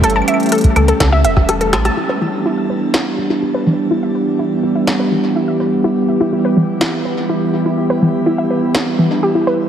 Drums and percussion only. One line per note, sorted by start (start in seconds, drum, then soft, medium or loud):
0.01 kick medium
0.01 closed hi-hat medium
0.10 closed hi-hat soft
0.16 claves soft
0.22 claves soft
0.28 closed hi-hat medium
0.28 claves medium
0.34 claves soft
0.40 closed hi-hat soft
0.43 closed hi-hat soft
0.46 closed hi-hat soft
0.49 closed hi-hat soft
0.52 closed hi-hat medium
0.55 closed hi-hat soft
0.58 closed hi-hat soft
0.61 kick loud
0.61 closed hi-hat soft
0.64 closed hi-hat soft
0.76 closed hi-hat soft
0.76 claves medium
0.88 closed hi-hat soft
1.00 kick loud
1.00 cross-stick medium
1.00 snare loud
1.00 closed hi-hat medium
1.12 cross-stick medium
1.25 closed hi-hat medium
1.37 kick loud
1.37 cross-stick medium
1.49 cross-stick medium
1.49 closed hi-hat medium
1.61 closed hi-hat soft
1.73 cross-stick loud
1.73 closed hi-hat medium
1.73 struck metal medium
1.85 cross-stick medium
1.85 closed hi-hat soft
2.94 snare loud
4.87 snare loud
6.81 snare loud
8.75 snare loud